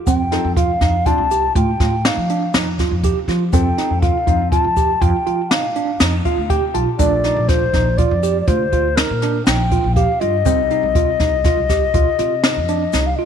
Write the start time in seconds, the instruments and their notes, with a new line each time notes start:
0.06 upright bass F2, tine electric piano C4, flute G5, kick, closed hi-hat, shaker
0.31 grand piano F3 C4 A4, tine electric piano D#4, snare, closed hi-hat
0.44 upright bass F2
0.56 tine electric piano F4, flute F5, kick, closed hi-hat
0.81 upright bass F2, tine electric piano D#4, kick, snare, closed hi-hat, shaker
1.06 grand piano F3 C4 D4, tine electric piano F4, flute A5, kick, closed hi-hat
1.18 upright bass C2
1.31 tine electric piano G4, closed hi-hat, shaker
1.55 upright bass A2, tine electric piano F4, flute G5, kick, closed hi-hat
1.80 upright bass A2, tine electric piano F4, kick, snare, closed hi-hat
2.05 tine electric piano D#4, flute F5, snare, closed hi-hat
2.17 upright bass F3
2.29 tine electric piano D4, closed hi-hat
2.54 upright bass F2, tine electric piano D#4, snare, closed hi-hat, shaker
2.79 tine electric piano F4, kick, snare, closed hi-hat, shaker
2.91 upright bass F2
3.03 tine electric piano G4, kick, closed hi-hat
3.28 upright bass F3, tine electric piano F4, snare, closed hi-hat
3.53 upright bass F2, grand piano F3 C4 A4, tine electric piano C4, flute G5, kick, closed hi-hat, shaker
3.78 tine electric piano D#4, snare, closed hi-hat
3.90 upright bass F2
4.02 tine electric piano F4, flute F5, kick, closed hi-hat
4.26 upright bass F2, grand piano F3 C4 F4, tine electric piano D#4, kick, closed hi-hat, shaker
4.52 tine electric piano F4, flute A5, kick, closed hi-hat
4.64 upright bass F2
4.77 tine electric piano G4, kick, closed hi-hat, shaker
5.01 upright bass F2, tine electric piano F4, flute G5, kick, closed hi-hat
5.27 upright bass F3, tine electric piano F4, closed hi-hat
5.50 tine electric piano D#4, flute F5, snare, closed hi-hat
5.63 upright bass A2
5.76 tine electric piano D4, closed hi-hat
6.00 upright bass F2, tine electric piano D#4, snare, closed hi-hat, shaker
6.25 tine electric piano F4, grand piano F5, kick, closed hi-hat, shaker
6.37 upright bass D2
6.50 tine electric piano G4, grand piano G5, kick, closed hi-hat
6.74 upright bass B1, tine electric piano F4, grand piano A5, closed hi-hat
6.98 upright bass A#1, grand piano A#2 A3 D4, tine electric piano D4, flute D5, kick, closed hi-hat, shaker
7.24 tine electric piano D#4, snare, closed hi-hat
7.37 upright bass A#1
7.48 tine electric piano F4, flute C5, kick, snare, closed hi-hat
7.73 upright bass A#1, tine electric piano D#4, kick, snare, closed hi-hat, shaker
7.97 tine electric piano F4, flute D5, kick, closed hi-hat
8.11 upright bass F2
8.23 tine electric piano G4, closed hi-hat, shaker
8.41 flute D5
8.47 upright bass D2, tine electric piano F4, flute C5, kick, closed hi-hat
8.72 upright bass D2, tine electric piano F4, kick, closed hi-hat
8.96 tine electric piano D#4, flute A#4, snare, closed hi-hat
9.10 upright bass A#2
9.22 tine electric piano D4, snare, closed hi-hat
9.46 upright bass A#1, tine electric piano D#4, flute G5, snare, closed hi-hat, shaker
9.71 tine electric piano F4, kick, closed hi-hat, shaker
9.84 upright bass A#1
9.95 tine electric piano G4, flute F5, kick, closed hi-hat
10.20 upright bass G2, tine electric piano F4, flute D#5, closed hi-hat
10.45 upright bass C2, grand piano C3 G3 D#4, tine electric piano C4, kick, closed hi-hat, shaker
10.70 tine electric piano D#4, closed hi-hat
10.83 upright bass C2
10.95 tine electric piano F4, kick, closed hi-hat, shaker
11.20 upright bass C2, tine electric piano D#4, kick, snare, closed hi-hat
11.44 tine electric piano F4, kick, snare, closed hi-hat, shaker
11.57 upright bass C2
11.69 tine electric piano G4, kick, snare, closed hi-hat, shaker
11.94 upright bass C2, tine electric piano F4, kick, closed hi-hat
12.19 upright bass C3, tine electric piano F4, snare, closed hi-hat
12.43 tine electric piano D#4, snare, closed hi-hat, shaker
12.57 upright bass F2
12.68 tine electric piano D4, closed hi-hat, shaker
12.93 upright bass C2, tine electric piano D#4, snare, shaker
13.06 flute F5
13.16 tine electric piano F4, flute D#5